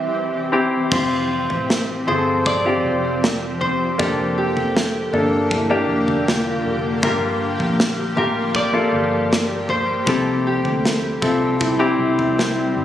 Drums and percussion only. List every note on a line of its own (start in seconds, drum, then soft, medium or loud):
0.92 kick loud
0.92 floor tom loud
0.92 crash medium
1.50 floor tom medium
1.70 snare medium
2.08 floor tom soft
2.46 kick medium
2.46 floor tom medium
3.24 snare loud
3.61 floor tom medium
3.99 kick loud
3.99 floor tom loud
4.57 floor tom medium
4.77 snare loud
5.14 floor tom soft
5.51 kick medium
5.51 floor tom medium
6.08 floor tom medium
6.28 snare medium
7.03 kick loud
7.03 floor tom loud
7.60 floor tom medium
7.80 snare loud
8.17 floor tom medium
8.55 kick medium
8.55 floor tom medium
9.33 snare loud
9.69 floor tom medium
10.07 kick loud
10.07 floor tom loud
10.65 floor tom medium
10.85 snare loud
11.22 kick medium
11.22 floor tom medium
11.61 kick medium
11.61 floor tom medium
12.19 floor tom medium
12.39 snare medium